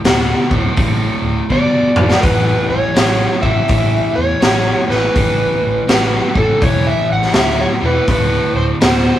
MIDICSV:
0, 0, Header, 1, 5, 480
1, 0, Start_track
1, 0, Tempo, 730816
1, 1468, Time_signature, 4, 2, 24, 8
1, 6038, End_track
2, 0, Start_track
2, 0, Title_t, "Electric slide guitar"
2, 0, Program_c, 0, 29
2, 997, Note_on_c, 0, 74, 83
2, 1449, Note_on_c, 0, 70, 59
2, 1452, Note_off_c, 0, 74, 0
2, 1465, Note_on_c, 0, 71, 75
2, 1475, Note_off_c, 0, 70, 0
2, 1751, Note_off_c, 0, 71, 0
2, 1773, Note_on_c, 0, 73, 73
2, 2248, Note_on_c, 0, 76, 84
2, 2267, Note_off_c, 0, 73, 0
2, 2729, Note_on_c, 0, 73, 93
2, 2745, Note_off_c, 0, 76, 0
2, 3217, Note_off_c, 0, 73, 0
2, 3220, Note_on_c, 0, 71, 74
2, 4150, Note_off_c, 0, 71, 0
2, 4188, Note_on_c, 0, 69, 88
2, 4343, Note_off_c, 0, 69, 0
2, 4354, Note_on_c, 0, 73, 86
2, 4511, Note_on_c, 0, 76, 88
2, 4515, Note_off_c, 0, 73, 0
2, 4658, Note_off_c, 0, 76, 0
2, 4679, Note_on_c, 0, 78, 92
2, 4828, Note_off_c, 0, 78, 0
2, 4831, Note_on_c, 0, 76, 102
2, 4994, Note_off_c, 0, 76, 0
2, 4995, Note_on_c, 0, 73, 81
2, 5037, Note_off_c, 0, 73, 0
2, 5160, Note_on_c, 0, 71, 76
2, 5318, Note_off_c, 0, 71, 0
2, 5327, Note_on_c, 0, 71, 80
2, 5623, Note_off_c, 0, 71, 0
2, 5626, Note_on_c, 0, 72, 88
2, 5671, Note_off_c, 0, 72, 0
2, 5795, Note_on_c, 0, 72, 83
2, 6038, Note_off_c, 0, 72, 0
2, 6038, End_track
3, 0, Start_track
3, 0, Title_t, "Overdriven electric guitar"
3, 0, Program_c, 1, 29
3, 29, Note_on_c, 1, 38, 78
3, 32, Note_on_c, 1, 47, 88
3, 303, Note_off_c, 1, 38, 0
3, 305, Note_off_c, 1, 47, 0
3, 324, Note_on_c, 1, 38, 66
3, 329, Note_on_c, 1, 45, 71
3, 486, Note_off_c, 1, 38, 0
3, 488, Note_off_c, 1, 45, 0
3, 494, Note_on_c, 1, 38, 77
3, 500, Note_on_c, 1, 45, 99
3, 946, Note_off_c, 1, 38, 0
3, 949, Note_off_c, 1, 45, 0
3, 977, Note_on_c, 1, 38, 73
3, 981, Note_on_c, 1, 47, 82
3, 1257, Note_off_c, 1, 38, 0
3, 1259, Note_off_c, 1, 47, 0
3, 1282, Note_on_c, 1, 38, 62
3, 1287, Note_on_c, 1, 45, 75
3, 1445, Note_off_c, 1, 38, 0
3, 1445, Note_off_c, 1, 45, 0
3, 1453, Note_on_c, 1, 45, 78
3, 1460, Note_on_c, 1, 52, 86
3, 1906, Note_off_c, 1, 45, 0
3, 1909, Note_off_c, 1, 52, 0
3, 1935, Note_on_c, 1, 45, 77
3, 1939, Note_on_c, 1, 54, 86
3, 2216, Note_off_c, 1, 45, 0
3, 2218, Note_off_c, 1, 54, 0
3, 2236, Note_on_c, 1, 45, 71
3, 2238, Note_on_c, 1, 52, 65
3, 2402, Note_off_c, 1, 45, 0
3, 2403, Note_off_c, 1, 52, 0
3, 2416, Note_on_c, 1, 45, 72
3, 2417, Note_on_c, 1, 52, 84
3, 2867, Note_off_c, 1, 45, 0
3, 2867, Note_off_c, 1, 52, 0
3, 2893, Note_on_c, 1, 45, 74
3, 2894, Note_on_c, 1, 54, 89
3, 3175, Note_off_c, 1, 45, 0
3, 3175, Note_off_c, 1, 54, 0
3, 3203, Note_on_c, 1, 45, 62
3, 3206, Note_on_c, 1, 52, 72
3, 3365, Note_off_c, 1, 45, 0
3, 3367, Note_off_c, 1, 52, 0
3, 3376, Note_on_c, 1, 45, 90
3, 3379, Note_on_c, 1, 52, 85
3, 3827, Note_off_c, 1, 45, 0
3, 3828, Note_off_c, 1, 52, 0
3, 3857, Note_on_c, 1, 45, 87
3, 3864, Note_on_c, 1, 54, 96
3, 4137, Note_off_c, 1, 45, 0
3, 4140, Note_off_c, 1, 54, 0
3, 4162, Note_on_c, 1, 52, 78
3, 4164, Note_on_c, 1, 45, 64
3, 4324, Note_off_c, 1, 52, 0
3, 4325, Note_off_c, 1, 45, 0
3, 4338, Note_on_c, 1, 45, 67
3, 4338, Note_on_c, 1, 52, 99
3, 4788, Note_off_c, 1, 45, 0
3, 4788, Note_off_c, 1, 52, 0
3, 4817, Note_on_c, 1, 45, 82
3, 4821, Note_on_c, 1, 54, 75
3, 5097, Note_off_c, 1, 45, 0
3, 5099, Note_off_c, 1, 54, 0
3, 5125, Note_on_c, 1, 45, 67
3, 5128, Note_on_c, 1, 52, 82
3, 5286, Note_off_c, 1, 45, 0
3, 5287, Note_off_c, 1, 52, 0
3, 5305, Note_on_c, 1, 38, 72
3, 5305, Note_on_c, 1, 45, 87
3, 5751, Note_off_c, 1, 38, 0
3, 5751, Note_off_c, 1, 45, 0
3, 5782, Note_on_c, 1, 38, 85
3, 5784, Note_on_c, 1, 47, 106
3, 6038, Note_off_c, 1, 38, 0
3, 6038, Note_off_c, 1, 47, 0
3, 6038, End_track
4, 0, Start_track
4, 0, Title_t, "Picked electric bass"
4, 0, Program_c, 2, 34
4, 26, Note_on_c, 2, 26, 82
4, 214, Note_off_c, 2, 26, 0
4, 335, Note_on_c, 2, 26, 87
4, 442, Note_off_c, 2, 26, 0
4, 507, Note_on_c, 2, 33, 97
4, 694, Note_off_c, 2, 33, 0
4, 801, Note_on_c, 2, 26, 75
4, 912, Note_off_c, 2, 26, 0
4, 987, Note_on_c, 2, 31, 74
4, 1175, Note_off_c, 2, 31, 0
4, 1295, Note_on_c, 2, 33, 92
4, 1401, Note_off_c, 2, 33, 0
4, 1470, Note_on_c, 2, 33, 84
4, 1657, Note_off_c, 2, 33, 0
4, 1772, Note_on_c, 2, 33, 81
4, 1879, Note_off_c, 2, 33, 0
4, 1947, Note_on_c, 2, 33, 86
4, 2134, Note_off_c, 2, 33, 0
4, 2253, Note_on_c, 2, 33, 70
4, 2360, Note_off_c, 2, 33, 0
4, 2427, Note_on_c, 2, 33, 94
4, 2614, Note_off_c, 2, 33, 0
4, 2737, Note_on_c, 2, 40, 77
4, 2843, Note_off_c, 2, 40, 0
4, 2909, Note_on_c, 2, 33, 84
4, 3096, Note_off_c, 2, 33, 0
4, 3215, Note_on_c, 2, 33, 95
4, 3322, Note_off_c, 2, 33, 0
4, 3389, Note_on_c, 2, 33, 82
4, 3576, Note_off_c, 2, 33, 0
4, 3699, Note_on_c, 2, 33, 90
4, 3804, Note_off_c, 2, 33, 0
4, 3876, Note_on_c, 2, 33, 93
4, 4061, Note_off_c, 2, 33, 0
4, 4174, Note_on_c, 2, 33, 75
4, 4281, Note_off_c, 2, 33, 0
4, 4344, Note_on_c, 2, 28, 83
4, 4533, Note_off_c, 2, 28, 0
4, 4657, Note_on_c, 2, 33, 82
4, 4763, Note_off_c, 2, 33, 0
4, 4823, Note_on_c, 2, 38, 84
4, 5011, Note_off_c, 2, 38, 0
4, 5136, Note_on_c, 2, 28, 90
4, 5242, Note_off_c, 2, 28, 0
4, 5305, Note_on_c, 2, 26, 86
4, 5493, Note_off_c, 2, 26, 0
4, 5611, Note_on_c, 2, 26, 80
4, 5719, Note_off_c, 2, 26, 0
4, 5792, Note_on_c, 2, 26, 94
4, 5978, Note_off_c, 2, 26, 0
4, 6038, End_track
5, 0, Start_track
5, 0, Title_t, "Drums"
5, 31, Note_on_c, 9, 46, 54
5, 35, Note_on_c, 9, 38, 108
5, 97, Note_off_c, 9, 46, 0
5, 100, Note_off_c, 9, 38, 0
5, 335, Note_on_c, 9, 36, 83
5, 401, Note_off_c, 9, 36, 0
5, 504, Note_on_c, 9, 46, 50
5, 508, Note_on_c, 9, 36, 111
5, 570, Note_off_c, 9, 46, 0
5, 574, Note_off_c, 9, 36, 0
5, 987, Note_on_c, 9, 36, 62
5, 1052, Note_off_c, 9, 36, 0
5, 1288, Note_on_c, 9, 45, 88
5, 1353, Note_off_c, 9, 45, 0
5, 1384, Note_on_c, 9, 38, 90
5, 1449, Note_off_c, 9, 38, 0
5, 1464, Note_on_c, 9, 46, 60
5, 1467, Note_on_c, 9, 36, 110
5, 1530, Note_off_c, 9, 46, 0
5, 1533, Note_off_c, 9, 36, 0
5, 1945, Note_on_c, 9, 46, 64
5, 1949, Note_on_c, 9, 38, 117
5, 2011, Note_off_c, 9, 46, 0
5, 2015, Note_off_c, 9, 38, 0
5, 2253, Note_on_c, 9, 36, 78
5, 2318, Note_off_c, 9, 36, 0
5, 2419, Note_on_c, 9, 46, 53
5, 2426, Note_on_c, 9, 36, 103
5, 2484, Note_off_c, 9, 46, 0
5, 2492, Note_off_c, 9, 36, 0
5, 2902, Note_on_c, 9, 46, 57
5, 2906, Note_on_c, 9, 38, 110
5, 2968, Note_off_c, 9, 46, 0
5, 2972, Note_off_c, 9, 38, 0
5, 3221, Note_on_c, 9, 38, 35
5, 3287, Note_off_c, 9, 38, 0
5, 3385, Note_on_c, 9, 46, 52
5, 3388, Note_on_c, 9, 36, 107
5, 3450, Note_off_c, 9, 46, 0
5, 3454, Note_off_c, 9, 36, 0
5, 3866, Note_on_c, 9, 46, 54
5, 3870, Note_on_c, 9, 38, 116
5, 3932, Note_off_c, 9, 46, 0
5, 3935, Note_off_c, 9, 38, 0
5, 4174, Note_on_c, 9, 36, 89
5, 4239, Note_off_c, 9, 36, 0
5, 4344, Note_on_c, 9, 46, 49
5, 4347, Note_on_c, 9, 36, 98
5, 4410, Note_off_c, 9, 46, 0
5, 4413, Note_off_c, 9, 36, 0
5, 4741, Note_on_c, 9, 38, 32
5, 4807, Note_off_c, 9, 38, 0
5, 4817, Note_on_c, 9, 46, 55
5, 4821, Note_on_c, 9, 38, 111
5, 4883, Note_off_c, 9, 46, 0
5, 4887, Note_off_c, 9, 38, 0
5, 5303, Note_on_c, 9, 46, 56
5, 5307, Note_on_c, 9, 36, 96
5, 5369, Note_off_c, 9, 46, 0
5, 5372, Note_off_c, 9, 36, 0
5, 5788, Note_on_c, 9, 46, 57
5, 5792, Note_on_c, 9, 38, 122
5, 5853, Note_off_c, 9, 46, 0
5, 5857, Note_off_c, 9, 38, 0
5, 6038, End_track
0, 0, End_of_file